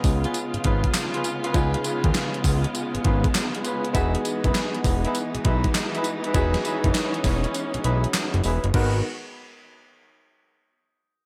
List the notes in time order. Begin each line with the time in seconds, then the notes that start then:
Already playing: C#3 G#3 B3 D#4 F4 G#4
0.04 C#2, kick, open hi-hat, tambourine
0.24 C#4 F4 G#4 B4, closed hi-hat
0.34 closed hi-hat, tambourine
0.54 G#1, closed hi-hat
0.64 G#1 C#4 F4 G#4 B4, kick, closed hi-hat
0.84 kick, closed hi-hat
0.94 snare, clap, closed hi-hat, tambourine
1.14 C#4 F4 G#4 B4, closed hi-hat
1.24 closed hi-hat, tambourine
1.44 C#4 F4 G#4 B4, closed hi-hat
1.53 C#2 B3 C#4 D#4 F4 G#4 B4, kick, closed hi-hat, tambourine
1.74 closed hi-hat
1.84 C#4 F4 G#4 B4, closed hi-hat, tambourine
2.04 D#2, kick, closed hi-hat
2.15 snare, clap, closed hi-hat, tambourine
2.34 closed hi-hat
2.44 C#2, kick, open hi-hat, tambourine
2.64 closed hi-hat
2.75 closed hi-hat, tambourine
2.95 G#1, closed hi-hat
3.04 G#1 C#4 F4 G#4 B4, kick, closed hi-hat
3.24 kick, closed hi-hat
3.35 snare, clap, closed hi-hat, tambourine
3.55 closed hi-hat
3.64 C#4 F4 G#4 B4, closed hi-hat, tambourine
3.85 closed hi-hat
3.93 E1 E3 B3 D#4 E4 F#4 G#4 B4, kick, closed hi-hat, tambourine
4.15 closed hi-hat
4.25 closed hi-hat, tambourine
4.44 F#1 D#4 E4 G#4 B4, kick, closed hi-hat
4.55 snare, clap, closed hi-hat, tambourine
4.75 closed hi-hat
4.84 E1, kick, open hi-hat, tambourine
5.04 D#4 E4 G#4 B4, closed hi-hat
5.15 closed hi-hat, tambourine
5.34 B1, closed hi-hat
5.44 B1 D#4 E4 G#4 B4, kick, closed hi-hat
5.64 kick, closed hi-hat
5.75 snare, clap, closed hi-hat, tambourine
5.94 D#4 E4 G#4 B4, closed hi-hat
6.04 closed hi-hat, tambourine
6.24 D#4 E4 G#4 B4, closed hi-hat
6.34 E1 B3 C#4 D#4 E4 F#4 G#4 B4, kick, closed hi-hat, tambourine
6.54 snare, closed hi-hat
6.64 D#4 E4 G#4 B4, closed hi-hat, tambourine
6.84 F#1, kick, closed hi-hat
6.95 snare, clap, closed hi-hat, tambourine
7.14 closed hi-hat
7.24 E1, kick, snare, open hi-hat, tambourine
7.44 closed hi-hat
7.54 closed hi-hat, tambourine
7.74 B1, closed hi-hat
7.84 B1 D#4 E4 G#4 B4, closed hi-hat
8.04 closed hi-hat
8.14 snare, clap, closed hi-hat, tambourine
8.34 F#1, closed hi-hat
8.44 E1 D#4 E4 G#4 B4, open hi-hat, tambourine
8.64 F#1, closed hi-hat
8.74 G#1 D#3 G#3 B3 D#4 F#4 G#4 A#4 B4, kick, crash